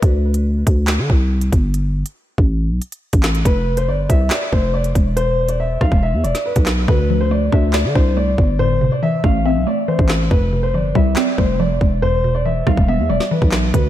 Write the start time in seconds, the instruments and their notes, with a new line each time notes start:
0.02 808-style bass D2, kick, closed hi-hat
0.34 closed hi-hat
0.67 808-style bass D2, kick, closed hi-hat
0.87 snare, clap, closed hi-hat
0.99 808-style bass D3
1.10 808-style bass C2, kick
1.41 closed hi-hat
1.52 808-style bass G1, kick, closed hi-hat
1.74 closed hi-hat
2.06 closed hi-hat
2.38 808-style bass A1, kick
2.70 808-style bass B1
2.82 closed hi-hat
2.92 closed hi-hat
3.13 808-style bass A1, kick, closed hi-hat
3.23 snare, clap, closed hi-hat
3.35 closed hi-hat
3.45 808-style bass F1, upright piano B4, kick, closed hi-hat
3.77 upright piano C5, closed hi-hat
3.88 808-style bass G1, upright piano D5
4.10 808-style bass C2, upright piano E5, kick, closed hi-hat
4.30 upright piano D5, snare, clap, closed hi-hat
4.53 808-style bass F1, upright piano C5, kick
4.74 upright piano D5
4.84 closed hi-hat
4.95 808-style bass E1, kick, closed hi-hat
5.17 upright piano C5, closed hi-hat
5.49 upright piano D5, closed hi-hat
5.60 upright piano E5
5.81 808-style bass B1, upright piano F5, kick, cross-stick
5.92 808-style bass E1, kick
6.03 upright piano E5
6.13 808-style bass E2
6.24 808-style bass E1, upright piano D5, closed hi-hat
6.35 snare, closed hi-hat
6.46 upright piano B4
6.56 808-style bass B1, kick, closed hi-hat
6.66 cross-stick, snare, clap, closed hi-hat
6.88 808-style bass D2, synth pluck D3, upright piano B4, kick
7.10 synth pluck F3
7.21 upright piano C5
7.31 synth pluck A3, upright piano D5
7.52 808-style bass D2, synth pluck D4, upright piano E5, kick
7.73 upright piano D5, synth pluck D5, snare, clap
7.85 808-style bass D3
7.95 808-style bass C2, synth pluck D4, upright piano C5, kick
8.17 synth pluck A3, upright piano D5
8.38 808-style bass G1, kick
8.59 synth pluck A2, upright piano C5
8.81 synth pluck C3
8.92 upright piano D5
9.03 synth pluck E3, upright piano E5
9.24 808-style bass A1, synth pluck A3, upright piano F5, kick
9.45 synth pluck C4, upright piano E5
9.56 808-style bass B1
9.67 synth pluck A3, upright piano D5
9.88 synth pluck E3, upright piano C5
9.99 808-style bass A1, kick
10.09 snare, clap
10.31 808-style bass F1, synth pluck F2, upright piano B4, kick
10.53 synth pluck C3
10.63 upright piano C5
10.74 808-style bass G1, synth pluck F3, upright piano D5
10.95 808-style bass C2, synth pluck G3, upright piano E5, kick
11.16 synth pluck C4, upright piano D5, snare, clap
11.38 808-style bass F1, synth pluck G3, upright piano C5, kick
11.59 synth pluck F3, upright piano D5
11.81 808-style bass E1, kick
12.02 synth pluck E2, upright piano C5
12.24 synth pluck B2
12.35 upright piano D5
12.45 synth pluck E3, upright piano E5
12.67 808-style bass B1, synth pluck G3, upright piano F5, kick, cross-stick
12.77 808-style bass E1, kick
12.88 synth pluck B3, upright piano E5
12.99 808-style bass E2
13.09 808-style bass E1, synth pluck G3, upright piano D5
13.20 snare
13.31 synth pluck E3, upright piano B4
13.42 808-style bass B1, kick
13.52 cross-stick, snare, clap
13.74 808-style bass D2, synth pluck D3, upright piano B4, kick, closed hi-hat